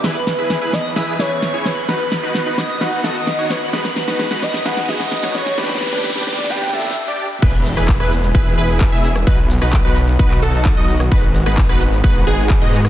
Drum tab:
CC |--------------------------------|--------------------------------|--------------------------------|--------------------------------|
HH |x-x-o-x-x-x-o-x-x-x-o-x-x-x-o-x-|x-x-o-x-x-x-o-x-x-x-o-x-x-x-o-x-|x-x-o-x-x-x-o-x-x-x-o-x-x-x-o---|x-x-o-x-x-x-o-x-x-x-o-x---------|
SH |--------------------------------|--------------------------------|--------------------------------|--------------------------------|
CP |--------------------------------|--------------------------------|--------------------------------|--------------------------------|
SD |o---o---o---o---o---o---o---o---|o---o---o---o---o---o---o---o---|o-o-o-o-o-o-o-o-o-o-o-o-o-o-o-o-|oooooooooooooooooooooooo--------|
BD |--------------------------------|--------------------------------|--------------------------------|--------------------------------|

CC |x-------------------------------|--------------------------------|--------------------------------|
HH |x-x-o-x-x-x-o-x-x-x-o-x-x-x-o-x-|x-x-o-x-x-x-o-x-x-x-o-x-x-x-o-x-|x-x-o-x-x-x-o-x-x-x-o-x-x-x-o-x-|
SH |x---x-x-x---x-x-x---x-x-x---x-x-|x---x-x-x---x-x-x---x-x-x---x-x-|x---x-x-x---x-x-x---x-x-x---x-x-|
CP |--------x---------------x-------|--------x---------x-----x-------|--------x---------------x-------|
SD |------r---r-------------------r-|------r-----------------------r-|------r---r-------------------r-|
BD |o-------o-------o-------o-------|o-------o-------o-------o-------|o-------o-------o-------o-------|